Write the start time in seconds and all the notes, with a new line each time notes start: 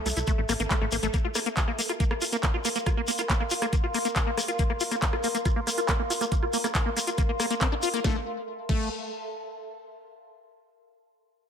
Already playing: A4 E5 A5
0.06 C2 A3, cross-stick, open hi-hat, shekere
0.16 C2 E4, closed hi-hat, shekere
0.27 A3, kick, cross-stick, closed hi-hat, shekere
0.38 A1 A3
0.49 A1 A#3, cross-stick, open hi-hat, shekere
0.59 A1 A#3, closed hi-hat, shekere
0.71 A3, kick, clap, closed hi-hat, shekere
0.81 A1 A3, cross-stick
0.92 A1 A#3, open hi-hat, shekere
1.03 A1 A3, cross-stick, closed hi-hat, shekere
1.13 A#3 A#4, kick, cross-stick, closed hi-hat, shekere
1.25 F4
1.29 F5
1.35 A#3, cross-stick, open hi-hat, shekere
1.41 C6
1.46 A#3, closed hi-hat, shekere
1.57 F4, kick, clap, closed hi-hat, shekere
1.68 A#3, cross-stick
1.78 A#3, open hi-hat, shekere
1.89 F4, cross-stick, closed hi-hat, shekere
2.00 A#3, kick, closed hi-hat, shekere
2.11 A#3, cross-stick
2.21 F4, open hi-hat, shekere
2.32 A#3, closed hi-hat, shekere
2.43 A#3, kick, cross-stick, clap, closed hi-hat, shekere
2.54 F4
2.65 A#3, cross-stick, open hi-hat, shekere
2.75 A#3, closed hi-hat, shekere
2.86 F4, kick, cross-stick, closed hi-hat, shekere
2.97 A#3
3.07 A#3, open hi-hat, shekere
3.18 F4, cross-stick, closed hi-hat, shekere
3.30 A#3, kick, clap, closed hi-hat, shekere
3.40 A#3, cross-stick
3.50 F4, open hi-hat, shekere
3.62 A#3, cross-stick, closed hi-hat, shekere
3.73 A#3, kick, closed hi-hat, shekere
3.84 F4
3.94 A#3, cross-stick, open hi-hat, shekere
4.05 A#3, closed hi-hat, shekere
4.16 F4, kick, cross-stick, clap, closed hi-hat, shekere
4.27 A#3
4.37 A#3, cross-stick, open hi-hat, shekere
4.48 F4, closed hi-hat, shekere
4.59 A#3, kick, closed hi-hat, shekere
4.70 A#3, cross-stick
4.80 F4, open hi-hat, shekere
4.91 A#3, cross-stick, closed hi-hat, shekere
5.02 A#3, kick, clap, closed hi-hat, shekere
5.13 F4, cross-stick
5.24 A#3, open hi-hat, shekere
5.35 A#3, closed hi-hat, shekere
5.45 F4, kick, cross-stick, closed hi-hat, shekere
5.56 A#3
5.67 A#3, cross-stick, open hi-hat, shekere
5.78 F4, closed hi-hat, shekere
5.88 A#3, kick, cross-stick, clap, closed hi-hat, shekere
5.99 A#3
6.10 F4, open hi-hat, shekere
6.21 A#3, cross-stick, closed hi-hat, shekere
6.32 A#3, kick, closed hi-hat, shekere
6.43 F4, cross-stick
6.53 A#3, open hi-hat, shekere
6.64 A#3, cross-stick, closed hi-hat, shekere
6.75 F4, kick, clap, closed hi-hat, shekere
6.86 A#3
6.97 A#3, cross-stick, open hi-hat, shekere
7.07 F4, closed hi-hat, shekere
7.18 A#3, kick, cross-stick, closed hi-hat, shekere
7.29 A#3
7.40 A#3, cross-stick, open hi-hat, shekere
7.50 A#3, closed hi-hat, shekere
7.61 C4, kick, clap, closed hi-hat, shekere
7.72 D4, cross-stick
7.82 F4, open hi-hat, shekere
7.94 A#3, cross-stick, closed hi-hat, shekere
8.04 A1 A3 A4, kick, snare
8.11 E5
8.69 A1 A3, kick, crash